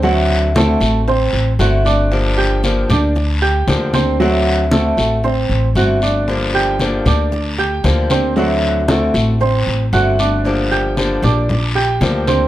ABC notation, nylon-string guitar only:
X:1
M:4/4
L:1/8
Q:1/4=115
K:Gm
V:1 name="Nylon-string guitar"
[D,A,C^F]2 [D,A,CF] [A,CF] z2 [D,A,CF] [A,CF] | [D,F,B,DG]2 [D,F,B,DG] [B,DG] z2 [D,F,B,DG] [B,DG] | [D,A,C^F]2 [D,A,CF] [A,CF] z2 [D,A,CF] [A,CF] | [D,F,B,DG]2 [D,F,B,DG] [B,DG] z2 [D,F,B,DG] [B,DG] |
[D,A,C^F]2 [D,A,CF] [A,CF] z2 [D,A,CF] [A,CF] | [D,F,B,DG]2 [D,F,B,DG] [B,DG] z2 [D,F,B,DG] [B,DG] |]